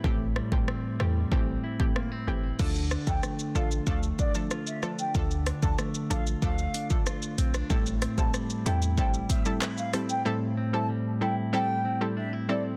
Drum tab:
CC |----------------|x---------------|----------------|----------------|
HH |----------------|----------------|--x---x---x---x-|--x---x---x---x-|
SH |----------------|xxxxxxxxxxxxxxxx|xxxxxxxxxxxxxxxx|xxxxxxxxxxxxxxxx|
CP |----------------|----------------|----------------|------------x---|
SD |--r-r-r-----r---|--r-r-------r-r-|--r-r-------r--r|--r-r-------r-r-|
BD |o--o----o--o----|o--o----o-o-----|o--o----o--o----|o--o----o-o-----|

CC |----------------|
HH |----------------|
SH |----------------|
CP |----------------|
SD |----------------|
BD |----------------|